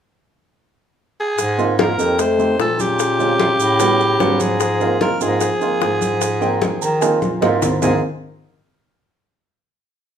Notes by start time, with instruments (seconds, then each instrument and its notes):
1.20 alto saxophone G#4
1.38 bass clarinet G#2, high bongo, high conga, maracas
1.58 upright piano A#3 C4 D#4 F4, high bongo, high conga, maracas
1.78 trombone F3, upright piano A#3 C4 D#4 F4, alto saxophone A#4, high bongo, high conga, maracas
1.98 bass clarinet F2, upright piano A#3 C4 D#4 G4, high conga, maracas
2.19 trombone A3, alto saxophone C5, high bongo, high conga, maracas
2.38 upright piano A3 C4 D#4 G4, high bongo, high conga, maracas
2.59 bass clarinet A#2, trombone F3, alto saxophone A4, high bongo, low bongo, high conga, maracas
2.79 trombone C#3, alto saxophone G4, high bongo, high conga, maracas
2.99 high bongo, high conga, maracas
3.19 upright piano G#3 C4 C#4 F4, high bongo, high conga, maracas
3.40 high bongo, high conga, maracas
3.60 bass clarinet A2, high conga, maracas
3.79 upright piano G3 B3 C#4 F#4, high bongo, high conga, maracas
4.00 high bongo, high conga, maracas
4.19 bass clarinet G#2, upright piano G3 B3 C#4 F#4, high bongo, low bongo, high conga, maracas
4.40 trombone F3, alto saxophone G#4, high bongo, high conga, maracas
4.60 high bongo, high conga, maracas
4.80 upright piano A#3 C4 D#4 F4, high bongo, high conga, maracas
5.00 trombone F3, upright piano A#3 C4 D#4 F4, alto saxophone A#4, high bongo, high conga, maracas
5.20 bass clarinet G#2, trombone F3, upright piano A#3 C4 D#4 F4, alto saxophone G#4, high conga, maracas
5.41 high bongo, high conga, maracas
5.61 upright piano A#3 C4 D#4 F4, high bongo, high conga, maracas
5.81 bass clarinet G#2, high bongo, low bongo, high conga, maracas
6.01 high bongo, high conga, maracas
6.21 high bongo, high conga, maracas
6.41 upright piano A#3 C4 D#4 G5, high bongo, high conga, maracas
6.62 high bongo, high conga, maracas
6.82 bass clarinet D#3, upright piano A#5, high conga, maracas
7.01 upright piano A#3 C4 D#4 F4 G#5, high bongo, high conga, maracas
7.22 bass clarinet A#2, upright piano F5, high bongo, high conga, maracas
7.41 bass clarinet G#2, upright piano A#3 C4 D#4 F4 D#5, high bongo, high conga, maracas
7.62 upright piano C5, low bongo, low conga, maracas
7.82 bass clarinet G#2, trombone F3, upright piano A#3 C4 D#4 F4, alto saxophone G#4, low bongo, low conga, maracas